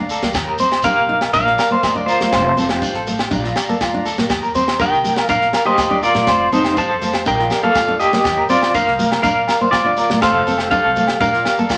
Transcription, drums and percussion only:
0.10 shekere medium
0.22 snare medium
0.22 shekere soft
0.33 kick loud
0.33 snare medium
0.33 low agogo medium
0.33 shekere loud
0.58 shekere medium
0.72 snare medium
0.72 low agogo medium
0.82 kick loud
0.82 shekere loud
1.21 snare medium
1.21 low agogo medium
1.33 kick loud
1.33 shekere loud
1.47 snare soft
1.58 snare medium
1.58 low agogo medium
1.58 shekere medium
1.83 kick medium
1.83 snare medium
1.83 low agogo medium
1.83 shekere loud
2.08 shekere medium
2.21 snare medium
2.21 shekere soft
2.32 kick loud
2.32 snare medium
2.32 low agogo medium
2.32 shekere medium
2.58 shekere medium
2.69 snare medium
2.69 low agogo medium
2.82 kick medium
2.82 shekere medium
2.94 snare soft
3.07 shekere medium
3.19 snare medium
3.19 low agogo medium
3.31 kick medium
3.31 shekere medium
3.44 snare soft
3.44 shekere soft
3.56 snare medium
3.56 low agogo medium
3.56 shekere medium
3.69 shekere soft
3.81 kick loud
3.81 snare medium
3.81 low agogo medium
3.81 shekere medium
4.06 snare soft
4.06 shekere medium
4.18 snare medium
4.18 shekere soft
4.29 kick loud
4.29 snare medium
4.29 low agogo medium
4.29 shekere loud
4.43 shekere soft
4.55 shekere medium
4.68 snare medium
4.68 low agogo medium
4.68 shekere soft
4.80 kick medium
4.80 shekere medium
4.93 shekere soft
5.05 snare soft
5.05 shekere medium
5.17 snare medium
5.17 low agogo medium
5.17 shekere soft
5.28 kick medium
5.28 shekere loud
5.41 snare soft
5.53 snare medium
5.53 low agogo medium
5.53 shekere medium
5.78 kick medium
5.78 snare medium
5.78 low agogo medium
5.78 shekere medium
6.03 shekere medium
6.15 snare medium
6.15 shekere soft
6.27 kick loud
6.27 snare medium
6.27 low agogo medium
6.27 shekere loud
6.53 shekere medium
6.64 snare medium
6.64 low agogo medium
6.77 kick loud
6.77 shekere medium
7.02 snare soft
7.02 shekere medium
7.14 snare medium
7.14 low agogo medium
7.26 kick loud
7.26 shekere loud
7.39 snare soft
7.50 snare medium
7.50 low agogo medium
7.50 shekere medium
7.75 kick medium
7.75 snare medium
7.75 low agogo medium
7.75 shekere loud
8.00 snare soft
8.00 shekere medium
8.13 snare medium
8.13 shekere soft
8.24 kick loud
8.24 snare medium
8.24 low agogo medium
8.24 shekere loud
8.49 shekere medium
8.62 snare medium
8.62 low agogo medium
8.75 kick medium
8.75 shekere loud
8.88 snare soft
8.99 shekere medium
9.11 snare medium
9.11 low agogo medium
9.24 kick loud
9.24 shekere loud
9.48 snare medium
9.48 low agogo medium
9.48 shekere medium
9.72 kick medium
9.72 snare medium
9.72 low agogo medium
9.72 shekere medium
9.97 snare soft
9.97 shekere medium
10.10 snare medium
10.10 shekere soft
10.21 kick loud
10.21 snare medium
10.21 low agogo medium
10.21 shekere medium
10.47 shekere medium
10.58 snare medium
10.58 low agogo medium
10.71 kick loud
10.71 shekere medium
10.96 shekere medium
11.07 snare medium
11.07 low agogo medium
11.21 kick medium
11.21 shekere medium
11.33 snare soft
11.33 shekere soft
11.45 snare medium
11.45 low agogo medium
11.45 shekere medium
11.58 shekere soft
11.69 kick medium
11.69 snare medium
11.69 low agogo medium
11.69 shekere medium

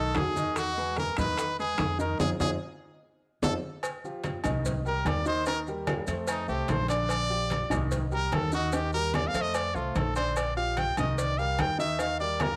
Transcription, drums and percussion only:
0.15 high bongo medium
0.15 low bongo medium
0.15 high conga medium
0.15 high timbale medium
0.15 low timbale medium
0.15 maracas soft
0.36 high conga medium
0.36 maracas medium
0.56 high bongo medium
0.56 high conga soft
0.56 high timbale medium
0.56 maracas loud
0.78 high conga soft
0.78 maracas soft
0.97 high bongo medium
0.97 high conga medium
0.97 high timbale medium
0.97 low timbale medium
0.97 maracas soft
1.17 high conga soft
1.17 low conga medium
1.17 high timbale loud
1.17 maracas medium
1.37 high bongo medium
1.37 high conga soft
1.37 high timbale medium
1.37 maracas loud
1.59 high conga soft
1.59 maracas soft
1.78 high bongo medium
1.78 low bongo medium
1.78 high conga medium
1.78 high timbale loud
1.78 low timbale medium
1.78 maracas soft
2.00 high conga soft
2.00 maracas medium
2.20 low bongo loud
2.20 high conga loud
2.20 high timbale loud
2.20 maracas medium
2.40 low bongo loud
2.40 high conga loud
2.40 high timbale loud
2.40 maracas medium
3.43 low bongo loud
3.43 high conga loud
3.43 high timbale loud
3.43 maracas loud
3.83 cowbell loud
3.83 high conga soft
3.83 low agogo loud
3.83 maracas medium
4.04 high conga soft
4.04 maracas soft
4.24 cowbell medium
4.24 high conga medium
4.24 low timbale medium
4.24 low agogo medium
4.24 maracas soft
4.44 cowbell medium
4.44 high conga soft
4.44 low conga medium
4.44 low agogo loud
4.44 maracas medium
4.65 cowbell loud
4.65 high conga soft
4.65 low conga medium
4.65 maracas loud
4.86 high conga soft
4.86 maracas soft
5.06 cowbell medium
5.06 high conga loud
5.06 low timbale medium
5.06 low agogo loud
5.06 maracas soft
5.26 maracas medium
5.46 cowbell loud
5.46 high conga soft
5.46 low agogo medium
5.46 maracas medium
5.67 high conga soft
5.67 maracas soft
5.87 cowbell medium
5.87 high conga loud
5.87 low timbale medium
5.87 low agogo loud
5.87 maracas soft
6.07 cowbell medium
6.07 high conga soft
6.07 low agogo medium
6.07 maracas medium
6.27 cowbell loud
6.27 high conga soft
6.27 low agogo loud
6.27 maracas loud
6.48 high conga soft
6.48 maracas soft
6.68 cowbell medium
6.68 high conga loud
6.68 low timbale medium
6.68 low agogo medium
6.68 maracas soft
6.88 cowbell medium
6.88 low agogo medium
6.88 maracas medium
7.09 cowbell medium
7.09 high conga soft
7.09 low agogo loud
7.09 maracas medium
7.31 high conga soft
7.31 maracas soft
7.50 cowbell medium
7.50 high conga medium
7.50 low timbale medium
7.50 low agogo medium
7.50 maracas soft
7.71 cowbell medium
7.71 high conga soft
7.71 low conga loud
7.71 low agogo loud
7.71 maracas medium
7.92 cowbell loud
7.92 high conga soft
7.92 low conga medium
7.92 maracas loud
8.12 high conga soft
8.12 maracas soft
8.32 cowbell medium
8.32 high conga medium
8.32 low timbale medium
8.32 low agogo loud
8.32 maracas soft
8.52 maracas medium
8.72 cowbell loud
8.72 high conga soft
8.72 low agogo medium
8.72 maracas medium
8.92 high conga soft
8.92 maracas soft
9.14 cowbell medium
9.14 high conga loud
9.14 low timbale medium
9.14 low agogo loud
9.14 maracas soft
9.34 cowbell medium
9.34 high conga soft
9.34 low agogo medium
9.34 maracas medium
9.54 cowbell loud
9.54 high conga soft
9.54 low agogo loud
9.54 maracas medium
9.75 high conga soft
9.75 maracas soft
9.95 cowbell medium
9.95 high conga loud
9.95 low timbale medium
9.95 low agogo medium
9.95 maracas soft
10.16 cowbell medium
10.16 low agogo medium
10.16 maracas medium
10.36 cowbell loud
10.36 high conga soft
10.36 low agogo loud
10.36 maracas medium
10.57 high conga soft
10.57 maracas soft
10.77 cowbell medium
10.77 high conga medium
10.77 low timbale medium
10.77 low agogo medium
10.77 maracas soft
10.97 cowbell medium
10.97 high conga soft
10.97 low conga medium
10.97 low agogo loud
10.97 maracas medium
11.18 cowbell loud
11.18 high conga soft
11.18 maracas loud
11.38 high conga soft
11.38 maracas soft
11.59 cowbell medium
11.59 high conga medium
11.59 low timbale medium
11.59 low agogo loud
11.59 maracas soft
11.80 high conga soft
11.80 maracas medium
11.99 cowbell loud
11.99 high conga soft
11.99 low agogo medium
11.99 maracas medium
12.20 high conga soft
12.20 maracas soft
12.40 cowbell medium
12.40 high conga loud
12.40 low timbale medium
12.40 low agogo loud
12.40 maracas soft

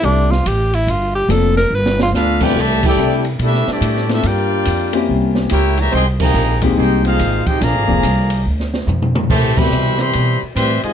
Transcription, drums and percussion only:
0.03 ride medium
0.32 snare medium
0.46 hi-hat pedal medium
0.46 ride medium
0.74 ride medium
0.88 ride medium
1.30 hi-hat pedal medium
1.30 ride medium
1.57 snare soft
1.57 ride soft
1.86 snare medium
1.99 snare loud
2.15 snare medium
2.15 hi-hat pedal medium
2.41 kick medium
2.41 crash loud
2.83 kick loud
2.83 crash medium
2.98 hi-hat pedal medium
3.25 ride medium
3.39 ride medium
3.54 snare soft
3.67 snare medium
3.82 hi-hat pedal medium
3.82 ride medium
3.97 snare soft
4.09 snare medium
4.09 ride medium
4.23 ride medium
4.65 hi-hat pedal medium
4.65 ride medium
4.93 ride medium
5.35 snare medium
5.50 hi-hat pedal medium
5.50 ride medium
5.78 ride medium
5.93 ride medium
6.20 kick loud
6.20 crash medium
6.36 hi-hat pedal medium
6.62 kick medium
6.62 ride medium
7.05 ride medium
7.19 hi-hat pedal medium
7.19 ride medium
7.47 kick medium
7.47 ride medium
7.61 snare soft
7.61 ride medium
7.89 kick medium
8.03 hi-hat pedal medium
8.03 ride medium
8.30 ride medium
8.60 snare soft
8.74 snare medium
8.88 hi-hat pedal medium
8.88 mid tom medium
9.02 mid tom medium
9.15 mid tom loud
9.30 kick medium
9.30 crash medium
9.57 kick loud
9.57 crash medium
9.72 hi-hat pedal medium
9.99 snare soft
9.99 ride medium
10.13 ride medium
10.56 hi-hat pedal medium
10.56 ride medium
10.83 ride medium

